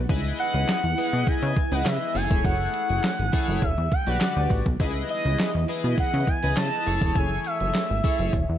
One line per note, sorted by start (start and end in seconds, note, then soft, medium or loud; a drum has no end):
0.09 0.33 C#2 loud
0.09 2.13 E3 medium
0.09 2.13 B3 medium
0.09 0.79 E4 loud
0.09 2.13 E4 medium
0.09 0.79 G#4 medium
0.09 0.79 B4 medium
0.09 0.80 D#5 loud
0.09 kick loud
0.09 closed hi-hat medium
0.39 1.29 F#5 loud
0.39 closed hi-hat medium
0.54 0.65 C#2 loud
0.54 closed hi-hat medium
0.68 snare loud
0.68 clap medium
0.68 closed hi-hat loud
0.84 0.95 E2 medium
0.84 closed hi-hat soft
0.98 1.55 E4 medium
0.98 1.56 G#4 medium
0.98 1.56 B4 medium
0.98 1.56 D#5 medium
0.98 open hi-hat medium
1.13 1.24 B2 loud
1.13 closed hi-hat soft
1.27 1.33 C#3 medium
1.27 1.74 G#5 loud
1.27 kick loud
1.27 closed hi-hat loud
1.42 1.54 C#3 loud
1.56 kick loud
1.56 closed hi-hat medium
1.72 1.83 C#2 medium
1.72 2.13 E4 medium
1.72 2.14 G#4 medium
1.72 2.15 B4 medium
1.72 2.15 D#5 medium
1.72 1.88 F#5 loud
1.72 closed hi-hat soft
1.85 1.98 C#3 loud
1.85 2.18 E5 loud
1.85 snare loud
1.85 clap medium
1.85 closed hi-hat loud
2.02 closed hi-hat soft
2.14 2.28 F#1 medium
2.14 3.61 E3 medium
2.14 3.61 A3 medium
2.14 3.09 E4 medium
2.14 3.09 G#4 medium
2.14 3.10 A4 medium
2.14 3.10 C#5 medium
2.14 3.61 G#5 medium
2.14 2.45 G#5 loud
2.14 closed hi-hat medium
2.31 2.42 E1 medium
2.31 kick loud
2.31 closed hi-hat medium
2.44 2.68 F#1 loud
2.44 3.65 F#5 loud
2.44 kick loud
2.44 closed hi-hat medium
2.74 closed hi-hat medium
2.89 3.01 F#1 medium
2.89 closed hi-hat medium
3.04 snare loud
3.04 clap medium
3.04 closed hi-hat medium
3.19 3.30 G#1 medium
3.19 closed hi-hat soft
3.32 3.62 E4 loud
3.32 3.62 G#4 medium
3.32 3.62 A4 medium
3.32 3.62 C#5 loud
3.32 kick loud
3.32 open hi-hat medium
3.48 3.59 F#1 medium
3.48 closed hi-hat soft
3.62 3.75 E1 loud
3.62 4.79 D3 medium
3.62 4.79 G3 medium
3.62 3.95 E5 medium
3.62 4.78 F#5 medium
3.62 kick loud
3.62 closed hi-hat medium
3.78 3.89 E2 loud
3.78 closed hi-hat soft
3.92 4.10 G5 loud
3.92 kick medium
3.92 closed hi-hat medium
4.07 4.18 B1 medium
4.07 4.65 F#4 medium
4.07 4.65 G4 medium
4.07 4.65 B4 medium
4.07 4.65 D5 medium
4.07 4.51 F#5 medium
4.07 closed hi-hat medium
4.21 snare loud
4.21 clap loud
4.21 closed hi-hat medium
4.36 4.48 D2 loud
4.50 4.63 A1 medium
4.50 kick medium
4.50 open hi-hat medium
4.66 4.77 B1 medium
4.66 kick loud
4.66 closed hi-hat medium
4.79 5.03 C#2 loud
4.79 6.83 E3 medium
4.79 6.83 B3 medium
4.79 6.84 E4 medium
4.79 5.50 E4 medium
4.79 5.50 G#4 medium
4.79 5.50 B4 medium
4.79 5.50 D#5 loud
4.79 kick loud
4.79 closed hi-hat medium
5.09 5.65 D#5 loud
5.09 closed hi-hat medium
5.25 5.36 C#2 loud
5.25 closed hi-hat medium
5.39 snare loud
5.39 clap medium
5.39 closed hi-hat loud
5.55 5.66 E2 medium
5.55 closed hi-hat soft
5.68 6.26 E4 medium
5.68 6.26 G#4 medium
5.68 6.26 B4 medium
5.68 6.26 D#5 medium
5.68 open hi-hat medium
5.84 5.95 B2 loud
5.84 closed hi-hat soft
5.98 6.30 F#5 loud
5.98 kick loud
5.98 closed hi-hat medium
6.14 6.25 C#3 loud
6.27 6.57 G#5 loud
6.27 kick loud
6.27 closed hi-hat medium
6.43 6.54 C#2 medium
6.43 6.85 E4 medium
6.43 6.85 G#4 medium
6.43 6.86 B4 medium
6.43 6.86 D#5 medium
6.43 closed hi-hat medium
6.57 6.69 C#3 loud
6.57 7.18 A5 loud
6.57 snare loud
6.57 clap medium
6.57 closed hi-hat loud
6.73 closed hi-hat soft
6.85 6.99 F#1 medium
6.85 8.31 E3 medium
6.85 8.31 A3 medium
6.85 7.80 E4 medium
6.85 7.81 G#4 medium
6.85 7.81 A4 medium
6.85 7.81 C#5 medium
6.85 8.31 G#5 medium
6.85 closed hi-hat medium
7.01 7.13 E1 medium
7.01 kick loud
7.01 closed hi-hat medium
7.15 7.39 F#1 loud
7.15 7.48 G#5 loud
7.15 kick loud
7.15 closed hi-hat medium
7.45 8.58 E5 loud
7.45 closed hi-hat medium
7.60 7.72 F#1 medium
7.60 closed hi-hat medium
7.74 snare loud
7.74 clap medium
7.74 closed hi-hat loud
7.90 8.01 G#1 medium
7.90 closed hi-hat soft
8.04 8.33 E4 medium
8.04 8.33 G#4 medium
8.04 8.33 A4 medium
8.04 8.33 C#5 medium
8.04 kick loud
8.04 open hi-hat medium
8.19 8.30 F#1 loud
8.19 closed hi-hat soft
8.33 8.45 E1 loud
8.33 8.58 D3 medium
8.33 8.58 G3 medium
8.33 8.58 F#5 medium
8.33 kick loud
8.33 closed hi-hat medium
8.49 8.58 E2 medium